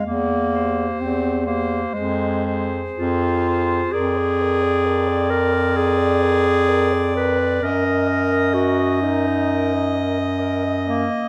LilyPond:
<<
  \new Staff \with { instrumentName = "Soprano saxophone" } { \time 4/4 \key f \phrygian \tempo 4 = 64 r8 c''4 c''8 c''8 c''4 c''8 | \key ees \minor d''1 | ees''1 | }
  \new Staff \with { instrumentName = "Alto saxophone" } { \time 4/4 \key f \phrygian r8 g'4 g'8 aes'8 aes'4 aes'8 | \key ees \minor bes'16 d''16 bes'16 d''16 bes'16 d''16 bes'16 d''16 bes'16 d''16 bes'16 d''16 bes'16 d''16 bes'16 d''16 | bes'16 ees''16 bes'16 ees''16 bes'16 ees''16 bes'16 ees''16 bes'16 ees''16 bes'16 ees''16 bes'16 ees''16 bes'16 ees''16 | }
  \new Staff \with { instrumentName = "Clarinet" } { \time 4/4 \key f \phrygian bes4 c'8 bes8 aes8 r8 f'4 | \key ees \minor aes'4. bes'8 aes'4. ces''8 | bes'4 ges'8 ees'4 r4 bes8 | }
  \new Staff \with { instrumentName = "Bass clarinet" } { \clef bass \time 4/4 \key f \phrygian e,4 e,4 f,4 f,4 | \key ees \minor f,1 | ges,2.~ ges,8 r8 | }
>>